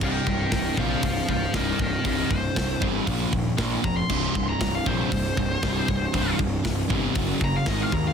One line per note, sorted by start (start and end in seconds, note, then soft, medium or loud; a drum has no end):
0.01 0.18 C1 loud
0.01 0.25 C2 medium
0.01 0.26 G2 medium
0.01 0.26 C3 medium
0.01 0.26 D#5 medium
0.01 0.27 G5 medium
0.01 kick loud
0.01 crash medium
0.27 0.44 C1 medium
0.27 0.50 C2 medium
0.27 0.50 G2 medium
0.27 0.51 D#5 medium
0.27 0.51 G5 medium
0.27 kick medium
0.52 0.69 C1 medium
0.52 0.75 C2 medium
0.52 0.75 G2 medium
0.52 0.76 D#5 medium
0.52 0.77 G5 medium
0.52 kick loud
0.52 snare loud
0.52 open hi-hat medium
0.77 0.94 A#1 medium
0.77 1.01 C2 medium
0.77 1.01 G2 medium
0.77 1.02 C3 loud
0.77 1.02 C5 medium
0.77 1.03 F5 loud
0.77 kick medium
1.02 1.20 C1 loud
1.02 1.26 C2 medium
1.02 1.26 G2 medium
1.02 1.28 C5 medium
1.02 1.29 F5 medium
1.02 kick loud
1.02 open hi-hat medium
1.29 1.46 C1 medium
1.29 1.52 C2 medium
1.29 1.52 G2 medium
1.29 1.53 C5 medium
1.29 1.54 F5 medium
1.29 kick medium
1.54 1.71 C1 medium
1.54 1.78 C2 medium
1.54 1.78 G2 loud
1.54 1.78 C3 loud
1.54 1.79 A#4 medium
1.54 1.80 D#5 medium
1.54 kick loud
1.54 snare loud
1.54 open hi-hat medium
1.79 1.96 C1 medium
1.79 2.02 C2 medium
1.79 2.02 G2 medium
1.79 2.04 A#4 medium
1.79 kick medium
1.83 2.06 D#5 medium
2.04 2.22 C1 medium
2.04 2.29 C2 medium
2.04 2.29 G2 loud
2.04 2.29 C3 medium
2.04 2.29 A#4 medium
2.04 2.31 D#5 medium
2.04 kick loud
2.04 open hi-hat medium
2.30 2.47 C1 medium
2.30 2.54 C2 medium
2.30 2.54 G2 medium
2.30 2.80 C5 loud
2.30 kick medium
2.56 2.73 C1 medium
2.56 2.80 C2 medium
2.56 2.80 G2 medium
2.56 kick loud
2.56 snare loud
2.56 open hi-hat medium
2.82 2.99 G1 medium
2.82 3.06 C2 medium
2.82 3.06 G2 medium
2.82 3.07 C3 medium
2.82 kick medium
3.07 3.24 A#1 medium
3.07 3.31 A#2 medium
3.07 3.31 F3 loud
3.07 3.32 A#3 medium
3.07 kick loud
3.07 open hi-hat medium
3.33 3.50 D#1 medium
3.33 3.56 A#2 medium
3.33 3.56 F3 medium
3.33 kick medium
3.57 3.75 A#1 medium
3.57 3.82 A#2 medium
3.57 3.82 F3 medium
3.57 3.82 A#3 loud
3.57 kick loud
3.57 snare loud
3.57 open hi-hat medium
3.83 4.01 F1 medium
3.83 4.07 A#2 medium
3.83 4.07 F3 medium
3.83 3.97 A#5 medium
3.83 kick medium
3.97 4.47 C6 medium
4.09 4.27 C1 loud
4.09 4.34 C2 medium
4.09 4.34 G2 medium
4.09 4.34 C3 loud
4.09 kick loud
4.09 crash medium
4.35 4.52 C1 medium
4.35 4.59 C2 medium
4.35 4.59 G2 medium
4.35 kick medium
4.49 4.74 A#5 medium
4.61 4.78 C1 medium
4.61 4.84 C2 medium
4.61 4.84 G2 medium
4.61 kick loud
4.61 snare loud
4.61 open hi-hat medium
4.75 4.87 F5 medium
4.86 5.03 A#1 medium
4.86 5.11 C2 medium
4.86 5.11 G2 medium
4.86 5.11 C3 loud
4.86 6.36 C5 medium
4.86 kick medium
5.12 5.29 C1 medium
5.12 5.35 C2 medium
5.12 5.36 G2 medium
5.12 kick loud
5.12 open hi-hat medium
5.37 5.55 C1 medium
5.37 5.61 C2 medium
5.37 5.61 G2 medium
5.37 kick medium
5.62 5.79 C1 medium
5.62 5.88 C2 medium
5.62 5.88 G2 loud
5.62 5.88 C3 loud
5.62 kick loud
5.62 snare loud
5.62 open hi-hat medium
5.88 6.05 C1 medium
5.88 6.12 C2 medium
5.88 6.12 G2 medium
5.88 kick medium
6.14 6.31 C1 loud
6.14 6.39 C2 medium
6.14 6.39 G2 medium
6.14 6.39 C3 loud
6.14 kick loud
6.14 open hi-hat medium
6.39 6.56 C1 medium
6.39 6.63 C2 medium
6.39 6.63 G2 medium
6.39 kick medium
6.65 6.82 C1 medium
6.65 6.88 C2 medium
6.65 6.88 G2 medium
6.65 kick loud
6.65 snare loud
6.65 open hi-hat medium
6.90 7.07 G1 medium
6.90 7.14 C2 medium
6.90 7.15 G2 medium
6.90 7.15 C3 medium
6.90 kick medium
7.15 7.33 F#1 medium
7.15 7.40 F#2 medium
7.15 7.40 C#3 medium
7.15 7.41 F#3 loud
7.15 kick loud
7.15 open hi-hat medium
7.41 7.58 F#1 medium
7.41 7.65 F#2 medium
7.41 7.65 C#3 medium
7.41 7.56 A#5 loud
7.41 kick medium
7.56 7.68 F5 medium
7.66 7.84 G#1 medium
7.66 7.91 G#2 medium
7.66 7.92 D#3 loud
7.66 7.92 G#3 loud
7.66 7.82 D#5 loud
7.66 kick loud
7.66 snare loud
7.66 open hi-hat medium
7.82 7.94 F5 medium
7.92 8.09 D#2 medium
7.92 8.13 G#2 medium
7.92 8.13 D#3 medium
7.92 8.06 A#5 medium
7.92 kick medium
8.08 8.13 F5 medium